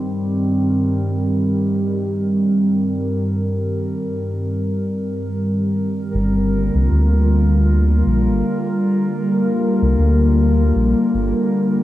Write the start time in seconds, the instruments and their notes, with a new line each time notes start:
Already playing: ambient pad G2 D#3 G3 C4 G4 C5
0.10 ambient pad A#4
6.13 sub bass G1, ambient pad D3
6.34 ambient pad A#3 F4
6.74 sub bass C2
6.91 sub bass D2
8.06 sub bass A#1
8.28 sub bass G1
9.82 sub bass C2
9.98 sub bass D2
10.75 sub bass A#1
11.14 sub bass G1